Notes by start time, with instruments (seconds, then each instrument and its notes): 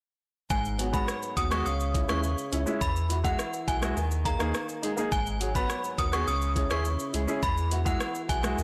0.50 sub bass G#1, nylon-string guitar G#2, synth bell G#5, kick, shaker
0.65 shaker
0.78 nylon-string guitar F#3, grand piano B3 F#4, closed hi-hat, shaker
0.93 grand piano G#3 B3 F#4, synth bell B5, kick, shaker
1.08 nylon-string guitar B3, cross-stick, shaker
1.23 shaker
1.36 sub bass D#2, grand piano B3 F#4, nylon-string guitar F#4, synth bell D#6, kick, closed hi-hat, shaker
1.51 grand piano G#3 B3 F#4, synth bell C#6, cross-stick, shaker
1.66 sub bass C#2, nylon-string guitar C#3, synth bell D#6, shaker
1.80 shaker
1.94 grand piano C#4 E4, nylon-string guitar E4, kick, closed hi-hat, shaker
2.08 sub bass D#2, grand piano G#3 C#4 E4, synth bell C#6, cross-stick, shaker
2.24 nylon-string guitar G#4, shaker
2.38 shaker
2.52 sub bass C#2, grand piano C#4 E4, nylon-string guitar C#4, closed hi-hat, shaker
2.66 grand piano G#3 C#4 E4, shaker
2.81 sub bass E2, nylon-string guitar E3, synth bell B5, kick, shaker
2.96 shaker
3.09 nylon-string guitar B3, grand piano E4 F#4, closed hi-hat, shaker
3.24 grand piano G#3 E4 F#4, synth bell F#5, kick, shaker
3.39 nylon-string guitar E4, cross-stick, shaker
3.53 shaker
3.67 sub bass B1, grand piano E4 F#4, nylon-string guitar G#4, synth bell G#5, kick, closed hi-hat, shaker
3.81 grand piano G#3 E4 F#4, cross-stick, shaker
3.97 sub bass D#2, nylon-string guitar D#3, shaker
4.11 shaker
4.25 nylon-string guitar A#3, grand piano D#4 G#4, synth bell A#5, kick, closed hi-hat, shaker
4.39 sub bass D#2, grand piano A#3 D#4 G#4, cross-stick, shaker
4.54 nylon-string guitar D#4, cross-stick, shaker
4.69 shaker
4.82 nylon-string guitar G#3, grand piano D#4 G#4, closed hi-hat, shaker
4.97 grand piano A#3 D#4 G#4, shaker
5.12 sub bass G#1, nylon-string guitar G#2, synth bell G#5, kick, shaker
5.27 shaker
5.40 nylon-string guitar F#3, grand piano F#4 G#4, closed hi-hat, shaker
5.54 grand piano B3 F#4 B4, synth bell B5, kick, shaker
5.70 nylon-string guitar B3, cross-stick, shaker
5.84 shaker
5.98 sub bass D#2, nylon-string guitar D#4, grand piano F#4 A#4, synth bell D#6, kick, closed hi-hat, shaker
6.12 grand piano B3 F#4 G#4, synth bell C#6, cross-stick, shaker
6.27 sub bass C#2, nylon-string guitar C#3, synth bell D#6, shaker
6.42 shaker
6.55 nylon-string guitar C#4, grand piano E4 G#4, kick, closed hi-hat, shaker
6.70 sub bass D#2, grand piano C#4 E4 G#4, synth bell C#6, cross-stick, shaker
6.85 nylon-string guitar E4, shaker
6.99 shaker
7.13 sub bass C#2, nylon-string guitar G#3, grand piano E4 G#4, closed hi-hat, shaker
7.27 grand piano C#4 E4 G#4, shaker
7.43 sub bass E2, nylon-string guitar E3, synth bell B5, kick, shaker
7.57 shaker
7.71 nylon-string guitar B3, grand piano E4 F#4, closed hi-hat, shaker
7.85 grand piano G#3 E4 F#4, synth bell F#5, kick, shaker
8.00 nylon-string guitar E4, cross-stick, shaker
8.15 shaker
8.28 sub bass B1, grand piano E4 F#4, nylon-string guitar G#4, synth bell G#5, kick, closed hi-hat, shaker
8.43 grand piano G#3 E4 F#4, cross-stick, shaker
8.58 sub bass D#2, nylon-string guitar D#3, shaker